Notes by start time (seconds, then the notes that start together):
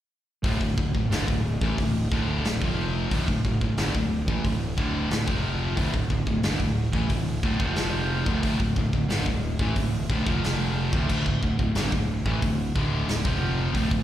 0.44 D1 D2 A2, kick, open hi-hat
0.61 D1 D2 A2, kick
0.78 D1 D2 A2, kick
0.95 D1 D2 A2, kick
1.10 G1 G2 D3, snare, open hi-hat
1.28 D1 D2 A2, kick
1.61 A1 A2 E3, kick
1.78 D1 D2 A2, kick, open hi-hat
2.12 D1 D2 A2 D3, kick
2.44 D1 D2, snare, open hi-hat
2.48 A2
2.60 F1 F2 C3, kick
2.65 C3 F3
3.11 D1 D2 A2, kick, open hi-hat
3.28 D1 D2 A2, kick
3.44 D1 D2 A2, kick
3.61 D1 D2 A2, kick
3.77 G1 G2 D3, snare, open hi-hat
3.95 D1 D2 A2, kick
4.28 A1 A2 E3, kick
4.45 D1 D2 A2, kick, open hi-hat
4.77 D1 D2 A2 D3, kick
5.10 D1 D2 A2, snare, open hi-hat
5.25 F1 F2 C3 F3, kick
5.77 D1 D2 A2, kick, open hi-hat
5.94 D1 D2 A2, kick
6.10 D1 D2 A2, kick
6.26 D1 D2 A2, kick
6.43 G1 G2 D3, snare, open hi-hat
6.59 D1 D2 A2, kick
6.93 A1 A2 E3, kick
7.09 D1 D2 A2, kick, open hi-hat
7.43 D1 D2 A2, kick
7.60 F1 F2 C3 F3, kick
7.76 snare, open hi-hat
8.26 D1 D2 A2, kick
8.43 D1 D2 A2, kick, open hi-hat
8.60 D1 D2 A2, kick
8.76 D1 D2 A2, kick
8.93 D1 D2 A2, kick
9.08 G1 G2 D3, snare, open hi-hat
9.26 D1 D2 A2, kick
9.59 A1 A2 E3, kick
9.76 D1 D2 A2, kick, open hi-hat
10.10 D1 D2 A2, kick
10.26 F1 F2 C3 F3, kick
10.44 snare, open hi-hat
10.92 D1 D2 A2, kick
11.09 D1 D2 A2, kick, crash
11.26 D1 D2 A2, kick
11.43 D1 D2 A2, kick
11.59 D1 D2 A2, kick
11.75 G1 G2 D3, snare, open hi-hat
11.92 D1 D2 A2, kick
12.26 A1 A2 E3, kick
12.42 D1 D2 A2, kick, open hi-hat
12.75 D1 D2 A2 D3, kick
13.08 D1 D2 A2, snare, open hi-hat
13.24 F1 F2 C3 F3, kick
13.73 D1 D2 A2, kick, open hi-hat
13.91 D1 D2 A2, kick